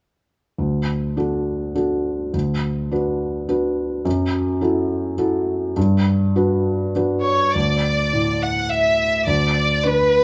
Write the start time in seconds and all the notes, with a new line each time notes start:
0.58 D2
1.17 D4 F#4 A4
1.75 D4 F#4 A4
2.34 D2
2.91 D4 F#4 B4
3.49 D4 F#4 B4
4.05 F#2
4.61 E4 F#4 A4
5.18 E4 F#4 A4
5.76 G2
6.36 D4 F#4 B4
6.96 D4 F#4 B4
7.24 C#5
7.54 D2 D5
8.13 A2
8.42 F#5
8.70 E5
9.26 D2 D5
9.84 D3 B4